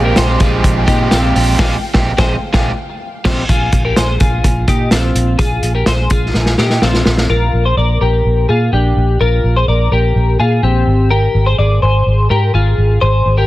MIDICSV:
0, 0, Header, 1, 6, 480
1, 0, Start_track
1, 0, Tempo, 476190
1, 1602, Time_signature, 4, 2, 24, 8
1, 13576, End_track
2, 0, Start_track
2, 0, Title_t, "String section"
2, 0, Program_c, 0, 48
2, 0, Note_on_c, 0, 77, 75
2, 0, Note_on_c, 0, 79, 77
2, 3477, Note_off_c, 0, 77, 0
2, 3480, Note_off_c, 0, 79, 0
2, 13576, End_track
3, 0, Start_track
3, 0, Title_t, "Clean electric guitar"
3, 0, Program_c, 1, 27
3, 45, Note_on_c, 1, 70, 83
3, 55, Note_on_c, 1, 67, 57
3, 166, Note_off_c, 1, 70, 0
3, 171, Note_off_c, 1, 67, 0
3, 171, Note_on_c, 1, 72, 83
3, 178, Note_on_c, 1, 68, 68
3, 394, Note_off_c, 1, 68, 0
3, 406, Note_on_c, 1, 68, 76
3, 408, Note_off_c, 1, 72, 0
3, 415, Note_on_c, 1, 65, 57
3, 855, Note_off_c, 1, 68, 0
3, 860, Note_off_c, 1, 65, 0
3, 886, Note_on_c, 1, 67, 86
3, 891, Note_on_c, 1, 63, 66
3, 1124, Note_off_c, 1, 63, 0
3, 1124, Note_off_c, 1, 67, 0
3, 1128, Note_on_c, 1, 65, 73
3, 1139, Note_on_c, 1, 60, 60
3, 1576, Note_off_c, 1, 65, 0
3, 1581, Note_off_c, 1, 60, 0
3, 1608, Note_on_c, 1, 68, 105
3, 1615, Note_on_c, 1, 65, 103
3, 1768, Note_off_c, 1, 68, 0
3, 1772, Note_off_c, 1, 65, 0
3, 2203, Note_on_c, 1, 72, 103
3, 2212, Note_on_c, 1, 68, 106
3, 2365, Note_off_c, 1, 72, 0
3, 2370, Note_off_c, 1, 68, 0
3, 2559, Note_on_c, 1, 68, 109
3, 2565, Note_on_c, 1, 65, 106
3, 2722, Note_off_c, 1, 68, 0
3, 2725, Note_off_c, 1, 65, 0
3, 3278, Note_on_c, 1, 65, 99
3, 3288, Note_on_c, 1, 60, 108
3, 3441, Note_off_c, 1, 65, 0
3, 3447, Note_off_c, 1, 60, 0
3, 3521, Note_on_c, 1, 68, 91
3, 3529, Note_on_c, 1, 65, 70
3, 3857, Note_off_c, 1, 68, 0
3, 3861, Note_off_c, 1, 65, 0
3, 3879, Note_on_c, 1, 70, 75
3, 3890, Note_on_c, 1, 67, 57
3, 3998, Note_off_c, 1, 70, 0
3, 3999, Note_on_c, 1, 72, 79
3, 4003, Note_off_c, 1, 67, 0
3, 4008, Note_on_c, 1, 68, 65
3, 4224, Note_off_c, 1, 68, 0
3, 4236, Note_on_c, 1, 68, 67
3, 4237, Note_off_c, 1, 72, 0
3, 4245, Note_on_c, 1, 65, 54
3, 4687, Note_off_c, 1, 68, 0
3, 4691, Note_off_c, 1, 65, 0
3, 4718, Note_on_c, 1, 67, 76
3, 4727, Note_on_c, 1, 63, 63
3, 4948, Note_off_c, 1, 63, 0
3, 4952, Note_on_c, 1, 65, 71
3, 4957, Note_off_c, 1, 67, 0
3, 4961, Note_on_c, 1, 60, 56
3, 5404, Note_off_c, 1, 65, 0
3, 5409, Note_off_c, 1, 60, 0
3, 5430, Note_on_c, 1, 68, 103
3, 5439, Note_on_c, 1, 65, 81
3, 5770, Note_off_c, 1, 68, 0
3, 5775, Note_off_c, 1, 65, 0
3, 5794, Note_on_c, 1, 70, 73
3, 5802, Note_on_c, 1, 67, 58
3, 5914, Note_off_c, 1, 70, 0
3, 5918, Note_off_c, 1, 67, 0
3, 5919, Note_on_c, 1, 72, 72
3, 5924, Note_on_c, 1, 68, 57
3, 6146, Note_off_c, 1, 68, 0
3, 6157, Note_off_c, 1, 72, 0
3, 6158, Note_on_c, 1, 68, 73
3, 6163, Note_on_c, 1, 65, 59
3, 6608, Note_off_c, 1, 68, 0
3, 6610, Note_off_c, 1, 65, 0
3, 6636, Note_on_c, 1, 67, 80
3, 6643, Note_on_c, 1, 63, 62
3, 6872, Note_off_c, 1, 63, 0
3, 6875, Note_off_c, 1, 67, 0
3, 6876, Note_on_c, 1, 65, 68
3, 6885, Note_on_c, 1, 60, 52
3, 7327, Note_off_c, 1, 65, 0
3, 7332, Note_off_c, 1, 60, 0
3, 7355, Note_on_c, 1, 70, 83
3, 7363, Note_on_c, 1, 65, 64
3, 7694, Note_off_c, 1, 70, 0
3, 7698, Note_off_c, 1, 65, 0
3, 7716, Note_on_c, 1, 72, 62
3, 7723, Note_on_c, 1, 68, 48
3, 7832, Note_off_c, 1, 72, 0
3, 7836, Note_on_c, 1, 74, 67
3, 7839, Note_off_c, 1, 68, 0
3, 7844, Note_on_c, 1, 70, 50
3, 8064, Note_off_c, 1, 70, 0
3, 8076, Note_off_c, 1, 74, 0
3, 8076, Note_on_c, 1, 70, 62
3, 8085, Note_on_c, 1, 67, 47
3, 8528, Note_off_c, 1, 70, 0
3, 8533, Note_off_c, 1, 67, 0
3, 8557, Note_on_c, 1, 68, 69
3, 8568, Note_on_c, 1, 65, 56
3, 8795, Note_off_c, 1, 65, 0
3, 8797, Note_off_c, 1, 68, 0
3, 8799, Note_on_c, 1, 67, 62
3, 8808, Note_on_c, 1, 62, 48
3, 9250, Note_off_c, 1, 67, 0
3, 9254, Note_off_c, 1, 62, 0
3, 9280, Note_on_c, 1, 70, 87
3, 9289, Note_on_c, 1, 65, 70
3, 9618, Note_off_c, 1, 70, 0
3, 9622, Note_off_c, 1, 65, 0
3, 9641, Note_on_c, 1, 72, 68
3, 9648, Note_on_c, 1, 68, 54
3, 9756, Note_off_c, 1, 72, 0
3, 9760, Note_on_c, 1, 74, 62
3, 9762, Note_off_c, 1, 68, 0
3, 9766, Note_on_c, 1, 70, 54
3, 9988, Note_off_c, 1, 70, 0
3, 9999, Note_off_c, 1, 74, 0
3, 10000, Note_on_c, 1, 70, 68
3, 10009, Note_on_c, 1, 67, 54
3, 10451, Note_off_c, 1, 70, 0
3, 10456, Note_off_c, 1, 67, 0
3, 10479, Note_on_c, 1, 68, 74
3, 10486, Note_on_c, 1, 65, 61
3, 10714, Note_off_c, 1, 65, 0
3, 10718, Note_on_c, 1, 67, 69
3, 10719, Note_off_c, 1, 68, 0
3, 10723, Note_on_c, 1, 60, 53
3, 11170, Note_off_c, 1, 67, 0
3, 11173, Note_off_c, 1, 60, 0
3, 11194, Note_on_c, 1, 70, 88
3, 11201, Note_on_c, 1, 67, 72
3, 11536, Note_off_c, 1, 70, 0
3, 11539, Note_off_c, 1, 67, 0
3, 11556, Note_on_c, 1, 72, 70
3, 11565, Note_on_c, 1, 68, 50
3, 11673, Note_off_c, 1, 68, 0
3, 11674, Note_off_c, 1, 72, 0
3, 11678, Note_on_c, 1, 74, 72
3, 11685, Note_on_c, 1, 68, 53
3, 11914, Note_off_c, 1, 68, 0
3, 11914, Note_off_c, 1, 74, 0
3, 11918, Note_on_c, 1, 72, 61
3, 11926, Note_on_c, 1, 68, 50
3, 12371, Note_off_c, 1, 72, 0
3, 12375, Note_off_c, 1, 68, 0
3, 12400, Note_on_c, 1, 70, 66
3, 12408, Note_on_c, 1, 67, 56
3, 12636, Note_off_c, 1, 70, 0
3, 12640, Note_on_c, 1, 68, 61
3, 12645, Note_off_c, 1, 67, 0
3, 12649, Note_on_c, 1, 65, 48
3, 13092, Note_off_c, 1, 68, 0
3, 13097, Note_off_c, 1, 65, 0
3, 13118, Note_on_c, 1, 72, 94
3, 13126, Note_on_c, 1, 68, 73
3, 13459, Note_off_c, 1, 72, 0
3, 13463, Note_off_c, 1, 68, 0
3, 13482, Note_on_c, 1, 70, 68
3, 13487, Note_on_c, 1, 67, 54
3, 13576, Note_off_c, 1, 67, 0
3, 13576, Note_off_c, 1, 70, 0
3, 13576, End_track
4, 0, Start_track
4, 0, Title_t, "Overdriven electric guitar"
4, 0, Program_c, 2, 29
4, 0, Note_on_c, 2, 46, 94
4, 0, Note_on_c, 2, 53, 99
4, 0, Note_on_c, 2, 56, 95
4, 0, Note_on_c, 2, 60, 98
4, 0, Note_on_c, 2, 67, 106
4, 269, Note_off_c, 2, 67, 0
4, 273, Note_on_c, 2, 67, 60
4, 281, Note_off_c, 2, 46, 0
4, 281, Note_off_c, 2, 60, 0
4, 285, Note_on_c, 2, 60, 59
4, 289, Note_off_c, 2, 56, 0
4, 294, Note_on_c, 2, 56, 52
4, 303, Note_off_c, 2, 53, 0
4, 388, Note_off_c, 2, 56, 0
4, 395, Note_on_c, 2, 53, 77
4, 396, Note_off_c, 2, 60, 0
4, 399, Note_off_c, 2, 67, 0
4, 400, Note_on_c, 2, 56, 71
4, 408, Note_on_c, 2, 60, 72
4, 412, Note_on_c, 2, 67, 77
4, 867, Note_off_c, 2, 53, 0
4, 872, Note_on_c, 2, 53, 73
4, 875, Note_off_c, 2, 56, 0
4, 879, Note_on_c, 2, 56, 80
4, 882, Note_off_c, 2, 60, 0
4, 886, Note_on_c, 2, 60, 75
4, 888, Note_off_c, 2, 67, 0
4, 892, Note_on_c, 2, 67, 74
4, 1104, Note_off_c, 2, 53, 0
4, 1113, Note_off_c, 2, 56, 0
4, 1116, Note_on_c, 2, 53, 64
4, 1117, Note_off_c, 2, 60, 0
4, 1122, Note_off_c, 2, 67, 0
4, 1125, Note_on_c, 2, 56, 72
4, 1129, Note_on_c, 2, 60, 81
4, 1134, Note_on_c, 2, 67, 73
4, 1345, Note_off_c, 2, 53, 0
4, 1355, Note_off_c, 2, 56, 0
4, 1358, Note_on_c, 2, 53, 65
4, 1362, Note_off_c, 2, 60, 0
4, 1365, Note_off_c, 2, 67, 0
4, 1367, Note_on_c, 2, 56, 67
4, 1374, Note_on_c, 2, 60, 75
4, 1377, Note_on_c, 2, 67, 75
4, 1586, Note_off_c, 2, 53, 0
4, 1589, Note_off_c, 2, 56, 0
4, 1594, Note_off_c, 2, 60, 0
4, 1594, Note_off_c, 2, 67, 0
4, 1598, Note_on_c, 2, 53, 101
4, 1601, Note_on_c, 2, 56, 105
4, 1606, Note_on_c, 2, 60, 97
4, 1606, Note_on_c, 2, 67, 97
4, 1762, Note_off_c, 2, 53, 0
4, 1764, Note_off_c, 2, 56, 0
4, 1767, Note_off_c, 2, 60, 0
4, 1767, Note_off_c, 2, 67, 0
4, 1955, Note_on_c, 2, 67, 101
4, 1962, Note_on_c, 2, 60, 94
4, 1970, Note_on_c, 2, 56, 89
4, 2120, Note_off_c, 2, 67, 0
4, 2124, Note_off_c, 2, 60, 0
4, 2129, Note_off_c, 2, 56, 0
4, 2192, Note_on_c, 2, 67, 91
4, 2202, Note_on_c, 2, 60, 104
4, 2211, Note_on_c, 2, 56, 99
4, 2358, Note_off_c, 2, 67, 0
4, 2364, Note_off_c, 2, 60, 0
4, 2369, Note_off_c, 2, 56, 0
4, 2551, Note_on_c, 2, 53, 104
4, 2557, Note_on_c, 2, 56, 103
4, 2564, Note_on_c, 2, 60, 110
4, 2567, Note_on_c, 2, 67, 103
4, 2717, Note_off_c, 2, 53, 0
4, 2721, Note_off_c, 2, 56, 0
4, 2725, Note_off_c, 2, 60, 0
4, 2726, Note_off_c, 2, 67, 0
4, 3272, Note_on_c, 2, 53, 90
4, 3277, Note_on_c, 2, 56, 95
4, 3283, Note_on_c, 2, 60, 92
4, 3288, Note_on_c, 2, 67, 102
4, 3437, Note_off_c, 2, 53, 0
4, 3440, Note_off_c, 2, 56, 0
4, 3444, Note_off_c, 2, 60, 0
4, 3447, Note_off_c, 2, 67, 0
4, 13576, End_track
5, 0, Start_track
5, 0, Title_t, "Fingered electric bass"
5, 0, Program_c, 3, 33
5, 0, Note_on_c, 3, 34, 96
5, 126, Note_off_c, 3, 34, 0
5, 170, Note_on_c, 3, 34, 101
5, 364, Note_off_c, 3, 34, 0
5, 409, Note_on_c, 3, 34, 107
5, 604, Note_off_c, 3, 34, 0
5, 646, Note_on_c, 3, 34, 120
5, 841, Note_off_c, 3, 34, 0
5, 884, Note_on_c, 3, 46, 101
5, 1080, Note_off_c, 3, 46, 0
5, 1123, Note_on_c, 3, 34, 103
5, 1319, Note_off_c, 3, 34, 0
5, 1366, Note_on_c, 3, 34, 101
5, 1561, Note_off_c, 3, 34, 0
5, 1605, Note_on_c, 3, 34, 103
5, 1766, Note_off_c, 3, 34, 0
5, 1962, Note_on_c, 3, 34, 103
5, 2124, Note_off_c, 3, 34, 0
5, 2203, Note_on_c, 3, 34, 105
5, 2365, Note_off_c, 3, 34, 0
5, 2561, Note_on_c, 3, 34, 105
5, 2723, Note_off_c, 3, 34, 0
5, 3279, Note_on_c, 3, 34, 105
5, 3441, Note_off_c, 3, 34, 0
5, 3520, Note_on_c, 3, 34, 100
5, 3715, Note_off_c, 3, 34, 0
5, 3757, Note_on_c, 3, 34, 89
5, 3953, Note_off_c, 3, 34, 0
5, 3998, Note_on_c, 3, 34, 94
5, 4194, Note_off_c, 3, 34, 0
5, 4242, Note_on_c, 3, 34, 101
5, 4436, Note_off_c, 3, 34, 0
5, 4478, Note_on_c, 3, 34, 102
5, 4673, Note_off_c, 3, 34, 0
5, 4716, Note_on_c, 3, 46, 95
5, 4912, Note_off_c, 3, 46, 0
5, 4952, Note_on_c, 3, 34, 93
5, 5150, Note_off_c, 3, 34, 0
5, 5188, Note_on_c, 3, 34, 92
5, 5388, Note_off_c, 3, 34, 0
5, 5433, Note_on_c, 3, 34, 100
5, 5631, Note_off_c, 3, 34, 0
5, 5669, Note_on_c, 3, 34, 93
5, 5868, Note_off_c, 3, 34, 0
5, 5915, Note_on_c, 3, 34, 104
5, 6112, Note_off_c, 3, 34, 0
5, 6157, Note_on_c, 3, 34, 95
5, 6353, Note_off_c, 3, 34, 0
5, 6394, Note_on_c, 3, 34, 88
5, 6591, Note_off_c, 3, 34, 0
5, 6634, Note_on_c, 3, 46, 90
5, 6831, Note_off_c, 3, 46, 0
5, 6874, Note_on_c, 3, 34, 95
5, 7071, Note_off_c, 3, 34, 0
5, 7114, Note_on_c, 3, 34, 83
5, 7311, Note_off_c, 3, 34, 0
5, 7353, Note_on_c, 3, 34, 89
5, 7551, Note_off_c, 3, 34, 0
5, 7592, Note_on_c, 3, 34, 79
5, 7790, Note_off_c, 3, 34, 0
5, 7831, Note_on_c, 3, 34, 87
5, 8030, Note_off_c, 3, 34, 0
5, 8074, Note_on_c, 3, 34, 83
5, 8272, Note_off_c, 3, 34, 0
5, 8316, Note_on_c, 3, 34, 90
5, 8513, Note_off_c, 3, 34, 0
5, 8556, Note_on_c, 3, 46, 80
5, 8753, Note_off_c, 3, 46, 0
5, 8794, Note_on_c, 3, 34, 88
5, 8992, Note_off_c, 3, 34, 0
5, 9035, Note_on_c, 3, 34, 81
5, 9233, Note_off_c, 3, 34, 0
5, 9276, Note_on_c, 3, 34, 86
5, 9474, Note_off_c, 3, 34, 0
5, 9513, Note_on_c, 3, 34, 77
5, 9712, Note_off_c, 3, 34, 0
5, 9754, Note_on_c, 3, 34, 79
5, 9953, Note_off_c, 3, 34, 0
5, 9994, Note_on_c, 3, 34, 80
5, 10193, Note_off_c, 3, 34, 0
5, 10238, Note_on_c, 3, 34, 87
5, 10435, Note_off_c, 3, 34, 0
5, 10476, Note_on_c, 3, 46, 86
5, 10674, Note_off_c, 3, 46, 0
5, 10712, Note_on_c, 3, 34, 99
5, 10912, Note_off_c, 3, 34, 0
5, 10956, Note_on_c, 3, 32, 87
5, 11352, Note_off_c, 3, 32, 0
5, 11435, Note_on_c, 3, 32, 82
5, 11634, Note_off_c, 3, 32, 0
5, 11676, Note_on_c, 3, 32, 85
5, 11875, Note_off_c, 3, 32, 0
5, 11920, Note_on_c, 3, 32, 84
5, 12117, Note_off_c, 3, 32, 0
5, 12159, Note_on_c, 3, 32, 84
5, 12357, Note_off_c, 3, 32, 0
5, 12399, Note_on_c, 3, 44, 84
5, 12597, Note_off_c, 3, 44, 0
5, 12640, Note_on_c, 3, 32, 90
5, 12838, Note_off_c, 3, 32, 0
5, 12880, Note_on_c, 3, 32, 87
5, 13078, Note_off_c, 3, 32, 0
5, 13123, Note_on_c, 3, 32, 89
5, 13320, Note_off_c, 3, 32, 0
5, 13362, Note_on_c, 3, 32, 84
5, 13559, Note_off_c, 3, 32, 0
5, 13576, End_track
6, 0, Start_track
6, 0, Title_t, "Drums"
6, 161, Note_on_c, 9, 38, 123
6, 166, Note_on_c, 9, 42, 92
6, 262, Note_off_c, 9, 38, 0
6, 267, Note_off_c, 9, 42, 0
6, 403, Note_on_c, 9, 42, 74
6, 408, Note_on_c, 9, 36, 91
6, 504, Note_off_c, 9, 42, 0
6, 509, Note_off_c, 9, 36, 0
6, 647, Note_on_c, 9, 36, 90
6, 648, Note_on_c, 9, 42, 98
6, 748, Note_off_c, 9, 36, 0
6, 749, Note_off_c, 9, 42, 0
6, 885, Note_on_c, 9, 36, 88
6, 886, Note_on_c, 9, 42, 72
6, 986, Note_off_c, 9, 36, 0
6, 987, Note_off_c, 9, 42, 0
6, 1121, Note_on_c, 9, 38, 127
6, 1127, Note_on_c, 9, 42, 116
6, 1222, Note_off_c, 9, 38, 0
6, 1228, Note_off_c, 9, 42, 0
6, 1370, Note_on_c, 9, 46, 71
6, 1470, Note_off_c, 9, 46, 0
6, 1603, Note_on_c, 9, 38, 106
6, 1604, Note_on_c, 9, 36, 108
6, 1606, Note_on_c, 9, 49, 81
6, 1703, Note_off_c, 9, 38, 0
6, 1705, Note_off_c, 9, 36, 0
6, 1706, Note_off_c, 9, 49, 0
6, 1958, Note_on_c, 9, 38, 106
6, 1962, Note_on_c, 9, 36, 100
6, 2059, Note_off_c, 9, 38, 0
6, 2063, Note_off_c, 9, 36, 0
6, 2200, Note_on_c, 9, 38, 115
6, 2202, Note_on_c, 9, 36, 122
6, 2300, Note_off_c, 9, 38, 0
6, 2303, Note_off_c, 9, 36, 0
6, 2557, Note_on_c, 9, 38, 111
6, 2561, Note_on_c, 9, 36, 109
6, 2658, Note_off_c, 9, 38, 0
6, 2662, Note_off_c, 9, 36, 0
6, 3274, Note_on_c, 9, 38, 101
6, 3277, Note_on_c, 9, 49, 90
6, 3279, Note_on_c, 9, 36, 109
6, 3375, Note_off_c, 9, 38, 0
6, 3378, Note_off_c, 9, 49, 0
6, 3380, Note_off_c, 9, 36, 0
6, 3519, Note_on_c, 9, 42, 89
6, 3520, Note_on_c, 9, 36, 103
6, 3620, Note_off_c, 9, 36, 0
6, 3620, Note_off_c, 9, 42, 0
6, 3754, Note_on_c, 9, 42, 64
6, 3757, Note_on_c, 9, 36, 83
6, 3855, Note_off_c, 9, 42, 0
6, 3857, Note_off_c, 9, 36, 0
6, 3996, Note_on_c, 9, 38, 108
6, 4001, Note_on_c, 9, 42, 91
6, 4097, Note_off_c, 9, 38, 0
6, 4102, Note_off_c, 9, 42, 0
6, 4235, Note_on_c, 9, 42, 66
6, 4241, Note_on_c, 9, 36, 88
6, 4336, Note_off_c, 9, 42, 0
6, 4341, Note_off_c, 9, 36, 0
6, 4479, Note_on_c, 9, 36, 82
6, 4479, Note_on_c, 9, 42, 89
6, 4579, Note_off_c, 9, 36, 0
6, 4580, Note_off_c, 9, 42, 0
6, 4716, Note_on_c, 9, 36, 87
6, 4716, Note_on_c, 9, 42, 70
6, 4816, Note_off_c, 9, 42, 0
6, 4817, Note_off_c, 9, 36, 0
6, 4950, Note_on_c, 9, 38, 115
6, 4956, Note_on_c, 9, 42, 103
6, 5050, Note_off_c, 9, 38, 0
6, 5057, Note_off_c, 9, 42, 0
6, 5197, Note_on_c, 9, 42, 65
6, 5298, Note_off_c, 9, 42, 0
6, 5431, Note_on_c, 9, 42, 84
6, 5433, Note_on_c, 9, 36, 100
6, 5532, Note_off_c, 9, 42, 0
6, 5534, Note_off_c, 9, 36, 0
6, 5673, Note_on_c, 9, 42, 59
6, 5774, Note_off_c, 9, 42, 0
6, 5909, Note_on_c, 9, 38, 107
6, 5914, Note_on_c, 9, 42, 77
6, 6009, Note_off_c, 9, 38, 0
6, 6015, Note_off_c, 9, 42, 0
6, 6148, Note_on_c, 9, 42, 63
6, 6156, Note_on_c, 9, 36, 83
6, 6249, Note_off_c, 9, 42, 0
6, 6257, Note_off_c, 9, 36, 0
6, 6392, Note_on_c, 9, 38, 52
6, 6493, Note_off_c, 9, 38, 0
6, 6511, Note_on_c, 9, 38, 53
6, 6612, Note_off_c, 9, 38, 0
6, 6631, Note_on_c, 9, 38, 66
6, 6732, Note_off_c, 9, 38, 0
6, 6753, Note_on_c, 9, 38, 57
6, 6854, Note_off_c, 9, 38, 0
6, 6873, Note_on_c, 9, 38, 78
6, 6974, Note_off_c, 9, 38, 0
6, 6994, Note_on_c, 9, 38, 62
6, 7095, Note_off_c, 9, 38, 0
6, 7112, Note_on_c, 9, 38, 96
6, 7212, Note_off_c, 9, 38, 0
6, 7232, Note_on_c, 9, 38, 80
6, 7333, Note_off_c, 9, 38, 0
6, 13576, End_track
0, 0, End_of_file